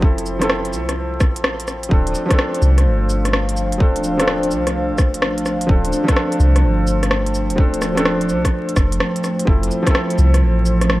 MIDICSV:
0, 0, Header, 1, 5, 480
1, 0, Start_track
1, 0, Key_signature, -1, "minor"
1, 0, Tempo, 472441
1, 24, Time_signature, 4, 2, 24, 8
1, 11176, End_track
2, 0, Start_track
2, 0, Title_t, "Analog synth pad"
2, 0, Program_c, 0, 89
2, 0, Note_on_c, 0, 72, 94
2, 1942, Note_on_c, 0, 57, 84
2, 2189, Note_on_c, 0, 77, 86
2, 2238, Note_on_c, 0, 62, 84
2, 2829, Note_on_c, 0, 53, 93
2, 9623, Note_off_c, 0, 77, 0
2, 9860, Note_on_c, 0, 64, 88
2, 11176, Note_off_c, 0, 53, 0
2, 11176, Note_off_c, 0, 57, 0
2, 11176, Note_off_c, 0, 62, 0
2, 11176, Note_off_c, 0, 64, 0
2, 11176, Note_off_c, 0, 72, 0
2, 11176, End_track
3, 0, Start_track
3, 0, Title_t, "Felt piano"
3, 0, Program_c, 1, 0
3, 0, Control_c, 1, 64, 127
3, 0, Note_on_c, 1, 53, 77
3, 0, Note_on_c, 1, 60, 79
3, 0, Note_on_c, 1, 64, 80
3, 0, Note_on_c, 1, 69, 97
3, 11, Note_off_c, 1, 60, 0
3, 11, Note_on_c, 1, 60, 70
3, 28, Note_off_c, 1, 64, 0
3, 28, Note_on_c, 1, 64, 68
3, 39, Note_off_c, 1, 69, 0
3, 39, Note_on_c, 1, 69, 83
3, 373, Note_off_c, 1, 53, 0
3, 378, Note_off_c, 1, 60, 0
3, 387, Note_off_c, 1, 64, 0
3, 392, Note_off_c, 1, 69, 0
3, 399, Note_on_c, 1, 53, 84
3, 414, Note_on_c, 1, 60, 76
3, 429, Note_on_c, 1, 64, 74
3, 442, Note_on_c, 1, 69, 92
3, 492, Note_off_c, 1, 53, 0
3, 499, Note_off_c, 1, 60, 0
3, 507, Note_off_c, 1, 64, 0
3, 514, Note_off_c, 1, 69, 0
3, 1919, Note_on_c, 1, 53, 78
3, 1932, Note_on_c, 1, 60, 73
3, 1948, Note_on_c, 1, 62, 71
3, 1958, Control_c, 1, 64, 0
3, 1961, Note_on_c, 1, 69, 83
3, 2116, Control_c, 1, 64, 127
3, 2279, Note_off_c, 1, 53, 0
3, 2294, Note_on_c, 1, 53, 87
3, 2299, Note_off_c, 1, 60, 0
3, 2307, Note_off_c, 1, 62, 0
3, 2314, Note_off_c, 1, 69, 0
3, 2323, Note_on_c, 1, 60, 79
3, 2348, Note_on_c, 1, 62, 79
3, 2376, Note_on_c, 1, 69, 97
3, 3820, Note_off_c, 1, 53, 0
3, 3835, Note_off_c, 1, 60, 0
3, 3841, Note_on_c, 1, 53, 75
3, 3847, Note_off_c, 1, 62, 0
3, 3855, Note_on_c, 1, 60, 72
3, 3862, Note_off_c, 1, 69, 0
3, 3866, Note_on_c, 1, 62, 70
3, 3881, Note_on_c, 1, 69, 85
3, 4213, Note_off_c, 1, 53, 0
3, 4220, Note_off_c, 1, 60, 0
3, 4226, Note_off_c, 1, 62, 0
3, 4233, Note_off_c, 1, 69, 0
3, 4242, Note_on_c, 1, 53, 85
3, 4256, Note_on_c, 1, 60, 76
3, 4269, Note_on_c, 1, 62, 77
3, 4282, Note_on_c, 1, 69, 93
3, 4334, Note_off_c, 1, 53, 0
3, 4341, Note_off_c, 1, 60, 0
3, 4347, Note_off_c, 1, 62, 0
3, 4354, Note_off_c, 1, 69, 0
3, 5758, Note_on_c, 1, 53, 82
3, 5774, Note_on_c, 1, 60, 73
3, 5786, Note_on_c, 1, 62, 73
3, 5800, Note_on_c, 1, 69, 86
3, 6121, Note_off_c, 1, 53, 0
3, 6137, Note_on_c, 1, 53, 87
3, 6139, Note_off_c, 1, 60, 0
3, 6146, Note_off_c, 1, 62, 0
3, 6152, Note_off_c, 1, 69, 0
3, 6163, Note_on_c, 1, 60, 80
3, 6191, Note_on_c, 1, 62, 82
3, 6219, Note_on_c, 1, 69, 98
3, 7662, Note_off_c, 1, 53, 0
3, 7675, Note_off_c, 1, 60, 0
3, 7679, Note_on_c, 1, 53, 78
3, 7689, Note_off_c, 1, 62, 0
3, 7692, Note_on_c, 1, 60, 71
3, 7703, Note_off_c, 1, 69, 0
3, 7707, Note_on_c, 1, 62, 73
3, 7720, Note_on_c, 1, 69, 86
3, 8052, Note_off_c, 1, 53, 0
3, 8059, Note_off_c, 1, 60, 0
3, 8066, Note_off_c, 1, 62, 0
3, 8073, Note_off_c, 1, 69, 0
3, 8077, Note_on_c, 1, 53, 84
3, 8093, Note_on_c, 1, 60, 79
3, 8106, Note_on_c, 1, 62, 77
3, 8119, Note_on_c, 1, 69, 92
3, 8171, Note_off_c, 1, 53, 0
3, 8179, Note_off_c, 1, 60, 0
3, 8186, Note_off_c, 1, 62, 0
3, 8193, Note_off_c, 1, 69, 0
3, 9603, Note_on_c, 1, 53, 80
3, 9614, Note_on_c, 1, 60, 71
3, 9631, Note_on_c, 1, 64, 73
3, 9638, Control_c, 1, 64, 0
3, 9643, Note_on_c, 1, 69, 86
3, 9789, Control_c, 1, 64, 127
3, 9968, Note_off_c, 1, 53, 0
3, 9980, Note_off_c, 1, 60, 0
3, 9983, Note_on_c, 1, 53, 88
3, 9988, Note_off_c, 1, 64, 0
3, 9994, Note_off_c, 1, 69, 0
3, 10010, Note_on_c, 1, 60, 79
3, 10037, Note_on_c, 1, 64, 80
3, 10065, Note_on_c, 1, 69, 97
3, 11176, Note_off_c, 1, 53, 0
3, 11176, Note_off_c, 1, 60, 0
3, 11176, Note_off_c, 1, 64, 0
3, 11176, Note_off_c, 1, 69, 0
3, 11176, End_track
4, 0, Start_track
4, 0, Title_t, "808-style bass"
4, 0, Program_c, 2, 38
4, 0, Note_on_c, 2, 29, 92
4, 739, Note_on_c, 2, 36, 96
4, 755, Note_off_c, 2, 29, 0
4, 1222, Note_on_c, 2, 33, 91
4, 1237, Note_off_c, 2, 36, 0
4, 1933, Note_off_c, 2, 33, 0
4, 1942, Note_on_c, 2, 26, 101
4, 2170, Note_off_c, 2, 26, 0
4, 2662, Note_on_c, 2, 36, 97
4, 2904, Note_on_c, 2, 31, 89
4, 2919, Note_off_c, 2, 36, 0
4, 3783, Note_on_c, 2, 26, 89
4, 3798, Note_off_c, 2, 31, 0
4, 4583, Note_on_c, 2, 36, 97
4, 4598, Note_off_c, 2, 26, 0
4, 4981, Note_on_c, 2, 28, 103
4, 4996, Note_off_c, 2, 36, 0
4, 5301, Note_on_c, 2, 33, 86
4, 5316, Note_off_c, 2, 28, 0
4, 5772, Note_off_c, 2, 33, 0
4, 5783, Note_on_c, 2, 26, 101
4, 6011, Note_off_c, 2, 26, 0
4, 6500, Note_on_c, 2, 36, 97
4, 6739, Note_on_c, 2, 31, 89
4, 6754, Note_off_c, 2, 36, 0
4, 7618, Note_on_c, 2, 26, 96
4, 7633, Note_off_c, 2, 31, 0
4, 8421, Note_on_c, 2, 36, 97
4, 8436, Note_off_c, 2, 26, 0
4, 8650, Note_off_c, 2, 36, 0
4, 8902, Note_on_c, 2, 29, 102
4, 9143, Note_off_c, 2, 29, 0
4, 9624, Note_on_c, 2, 29, 101
4, 9851, Note_off_c, 2, 29, 0
4, 10346, Note_on_c, 2, 36, 96
4, 10585, Note_on_c, 2, 33, 88
4, 10600, Note_off_c, 2, 36, 0
4, 11176, Note_off_c, 2, 33, 0
4, 11176, End_track
5, 0, Start_track
5, 0, Title_t, "Drums"
5, 24, Note_on_c, 9, 36, 123
5, 125, Note_off_c, 9, 36, 0
5, 185, Note_on_c, 9, 42, 46
5, 265, Note_on_c, 9, 69, 73
5, 287, Note_off_c, 9, 42, 0
5, 366, Note_off_c, 9, 69, 0
5, 422, Note_on_c, 9, 37, 61
5, 422, Note_on_c, 9, 42, 56
5, 503, Note_off_c, 9, 37, 0
5, 503, Note_on_c, 9, 37, 107
5, 524, Note_off_c, 9, 42, 0
5, 605, Note_off_c, 9, 37, 0
5, 660, Note_on_c, 9, 42, 32
5, 744, Note_on_c, 9, 69, 60
5, 762, Note_off_c, 9, 42, 0
5, 846, Note_off_c, 9, 69, 0
5, 902, Note_on_c, 9, 37, 49
5, 902, Note_on_c, 9, 42, 55
5, 1004, Note_off_c, 9, 37, 0
5, 1004, Note_off_c, 9, 42, 0
5, 1223, Note_on_c, 9, 36, 107
5, 1225, Note_on_c, 9, 37, 60
5, 1225, Note_on_c, 9, 69, 70
5, 1324, Note_off_c, 9, 36, 0
5, 1326, Note_off_c, 9, 37, 0
5, 1326, Note_off_c, 9, 69, 0
5, 1382, Note_on_c, 9, 42, 54
5, 1463, Note_on_c, 9, 37, 109
5, 1484, Note_off_c, 9, 42, 0
5, 1564, Note_off_c, 9, 37, 0
5, 1622, Note_on_c, 9, 42, 43
5, 1704, Note_on_c, 9, 37, 35
5, 1704, Note_on_c, 9, 69, 63
5, 1723, Note_off_c, 9, 42, 0
5, 1806, Note_off_c, 9, 37, 0
5, 1806, Note_off_c, 9, 69, 0
5, 1861, Note_on_c, 9, 42, 57
5, 1943, Note_on_c, 9, 36, 119
5, 1963, Note_off_c, 9, 42, 0
5, 2045, Note_off_c, 9, 36, 0
5, 2102, Note_on_c, 9, 42, 43
5, 2183, Note_on_c, 9, 69, 74
5, 2203, Note_off_c, 9, 42, 0
5, 2284, Note_off_c, 9, 69, 0
5, 2342, Note_on_c, 9, 36, 105
5, 2342, Note_on_c, 9, 37, 64
5, 2342, Note_on_c, 9, 42, 52
5, 2424, Note_off_c, 9, 37, 0
5, 2424, Note_on_c, 9, 37, 107
5, 2443, Note_off_c, 9, 36, 0
5, 2444, Note_off_c, 9, 42, 0
5, 2526, Note_off_c, 9, 37, 0
5, 2585, Note_on_c, 9, 42, 31
5, 2664, Note_on_c, 9, 69, 63
5, 2687, Note_off_c, 9, 42, 0
5, 2766, Note_off_c, 9, 69, 0
5, 2822, Note_on_c, 9, 37, 50
5, 2822, Note_on_c, 9, 42, 55
5, 2924, Note_off_c, 9, 37, 0
5, 2924, Note_off_c, 9, 42, 0
5, 3144, Note_on_c, 9, 69, 73
5, 3246, Note_off_c, 9, 69, 0
5, 3302, Note_on_c, 9, 37, 50
5, 3302, Note_on_c, 9, 42, 52
5, 3386, Note_off_c, 9, 37, 0
5, 3386, Note_on_c, 9, 37, 105
5, 3404, Note_off_c, 9, 42, 0
5, 3487, Note_off_c, 9, 37, 0
5, 3543, Note_on_c, 9, 42, 42
5, 3625, Note_on_c, 9, 69, 63
5, 3645, Note_off_c, 9, 42, 0
5, 3727, Note_off_c, 9, 69, 0
5, 3783, Note_on_c, 9, 42, 54
5, 3865, Note_on_c, 9, 36, 112
5, 3885, Note_off_c, 9, 42, 0
5, 3966, Note_off_c, 9, 36, 0
5, 4022, Note_on_c, 9, 42, 42
5, 4104, Note_on_c, 9, 69, 79
5, 4123, Note_off_c, 9, 42, 0
5, 4206, Note_off_c, 9, 69, 0
5, 4263, Note_on_c, 9, 37, 68
5, 4263, Note_on_c, 9, 42, 53
5, 4344, Note_off_c, 9, 37, 0
5, 4344, Note_on_c, 9, 37, 101
5, 4364, Note_off_c, 9, 42, 0
5, 4446, Note_off_c, 9, 37, 0
5, 4504, Note_on_c, 9, 42, 30
5, 4584, Note_on_c, 9, 69, 65
5, 4605, Note_off_c, 9, 42, 0
5, 4686, Note_off_c, 9, 69, 0
5, 4743, Note_on_c, 9, 37, 53
5, 4743, Note_on_c, 9, 42, 53
5, 4844, Note_off_c, 9, 37, 0
5, 4844, Note_off_c, 9, 42, 0
5, 5064, Note_on_c, 9, 36, 101
5, 5064, Note_on_c, 9, 37, 61
5, 5064, Note_on_c, 9, 69, 79
5, 5165, Note_off_c, 9, 36, 0
5, 5165, Note_off_c, 9, 37, 0
5, 5165, Note_off_c, 9, 69, 0
5, 5224, Note_on_c, 9, 42, 52
5, 5305, Note_on_c, 9, 37, 104
5, 5326, Note_off_c, 9, 42, 0
5, 5407, Note_off_c, 9, 37, 0
5, 5465, Note_on_c, 9, 42, 44
5, 5546, Note_on_c, 9, 37, 36
5, 5546, Note_on_c, 9, 69, 67
5, 5566, Note_off_c, 9, 42, 0
5, 5647, Note_off_c, 9, 37, 0
5, 5647, Note_off_c, 9, 69, 0
5, 5702, Note_on_c, 9, 42, 54
5, 5784, Note_on_c, 9, 36, 111
5, 5804, Note_off_c, 9, 42, 0
5, 5885, Note_off_c, 9, 36, 0
5, 5941, Note_on_c, 9, 42, 45
5, 6025, Note_on_c, 9, 69, 80
5, 6042, Note_off_c, 9, 42, 0
5, 6126, Note_off_c, 9, 69, 0
5, 6182, Note_on_c, 9, 36, 103
5, 6183, Note_on_c, 9, 37, 70
5, 6183, Note_on_c, 9, 42, 55
5, 6264, Note_off_c, 9, 37, 0
5, 6264, Note_on_c, 9, 37, 100
5, 6283, Note_off_c, 9, 36, 0
5, 6285, Note_off_c, 9, 42, 0
5, 6366, Note_off_c, 9, 37, 0
5, 6422, Note_on_c, 9, 42, 32
5, 6505, Note_on_c, 9, 69, 67
5, 6524, Note_off_c, 9, 42, 0
5, 6607, Note_off_c, 9, 69, 0
5, 6662, Note_on_c, 9, 37, 54
5, 6662, Note_on_c, 9, 42, 55
5, 6764, Note_off_c, 9, 37, 0
5, 6764, Note_off_c, 9, 42, 0
5, 6982, Note_on_c, 9, 69, 78
5, 7084, Note_off_c, 9, 69, 0
5, 7141, Note_on_c, 9, 37, 54
5, 7141, Note_on_c, 9, 42, 54
5, 7221, Note_off_c, 9, 37, 0
5, 7221, Note_on_c, 9, 37, 100
5, 7242, Note_off_c, 9, 42, 0
5, 7323, Note_off_c, 9, 37, 0
5, 7381, Note_on_c, 9, 42, 44
5, 7464, Note_on_c, 9, 69, 66
5, 7482, Note_off_c, 9, 42, 0
5, 7565, Note_off_c, 9, 69, 0
5, 7621, Note_on_c, 9, 42, 56
5, 7702, Note_on_c, 9, 36, 112
5, 7723, Note_off_c, 9, 42, 0
5, 7804, Note_off_c, 9, 36, 0
5, 7861, Note_on_c, 9, 42, 46
5, 7943, Note_on_c, 9, 37, 61
5, 7943, Note_on_c, 9, 69, 78
5, 7963, Note_off_c, 9, 42, 0
5, 8044, Note_off_c, 9, 37, 0
5, 8044, Note_off_c, 9, 69, 0
5, 8101, Note_on_c, 9, 37, 70
5, 8101, Note_on_c, 9, 42, 58
5, 8183, Note_off_c, 9, 37, 0
5, 8183, Note_on_c, 9, 37, 105
5, 8203, Note_off_c, 9, 42, 0
5, 8284, Note_off_c, 9, 37, 0
5, 8341, Note_on_c, 9, 42, 33
5, 8424, Note_on_c, 9, 69, 65
5, 8443, Note_off_c, 9, 42, 0
5, 8526, Note_off_c, 9, 69, 0
5, 8581, Note_on_c, 9, 36, 60
5, 8584, Note_on_c, 9, 37, 55
5, 8584, Note_on_c, 9, 42, 57
5, 8683, Note_off_c, 9, 36, 0
5, 8686, Note_off_c, 9, 37, 0
5, 8686, Note_off_c, 9, 42, 0
5, 8825, Note_on_c, 9, 42, 32
5, 8903, Note_on_c, 9, 36, 102
5, 8905, Note_on_c, 9, 37, 65
5, 8905, Note_on_c, 9, 69, 75
5, 8927, Note_off_c, 9, 42, 0
5, 9004, Note_off_c, 9, 36, 0
5, 9006, Note_off_c, 9, 37, 0
5, 9006, Note_off_c, 9, 69, 0
5, 9065, Note_on_c, 9, 42, 57
5, 9147, Note_on_c, 9, 37, 105
5, 9167, Note_off_c, 9, 42, 0
5, 9248, Note_off_c, 9, 37, 0
5, 9305, Note_on_c, 9, 42, 45
5, 9387, Note_on_c, 9, 37, 39
5, 9387, Note_on_c, 9, 69, 67
5, 9407, Note_off_c, 9, 42, 0
5, 9489, Note_off_c, 9, 37, 0
5, 9489, Note_off_c, 9, 69, 0
5, 9545, Note_on_c, 9, 42, 55
5, 9624, Note_on_c, 9, 36, 114
5, 9647, Note_off_c, 9, 42, 0
5, 9726, Note_off_c, 9, 36, 0
5, 9787, Note_on_c, 9, 42, 47
5, 9867, Note_on_c, 9, 69, 76
5, 9889, Note_off_c, 9, 42, 0
5, 9969, Note_off_c, 9, 69, 0
5, 10023, Note_on_c, 9, 36, 108
5, 10027, Note_on_c, 9, 37, 71
5, 10027, Note_on_c, 9, 42, 61
5, 10107, Note_off_c, 9, 37, 0
5, 10107, Note_on_c, 9, 37, 110
5, 10125, Note_off_c, 9, 36, 0
5, 10129, Note_off_c, 9, 42, 0
5, 10209, Note_off_c, 9, 37, 0
5, 10264, Note_on_c, 9, 42, 34
5, 10347, Note_on_c, 9, 69, 62
5, 10366, Note_off_c, 9, 42, 0
5, 10448, Note_off_c, 9, 69, 0
5, 10506, Note_on_c, 9, 37, 56
5, 10506, Note_on_c, 9, 42, 59
5, 10608, Note_off_c, 9, 37, 0
5, 10608, Note_off_c, 9, 42, 0
5, 10827, Note_on_c, 9, 69, 73
5, 10929, Note_off_c, 9, 69, 0
5, 10987, Note_on_c, 9, 37, 56
5, 10987, Note_on_c, 9, 42, 57
5, 11070, Note_off_c, 9, 37, 0
5, 11070, Note_on_c, 9, 37, 104
5, 11088, Note_off_c, 9, 42, 0
5, 11172, Note_off_c, 9, 37, 0
5, 11176, End_track
0, 0, End_of_file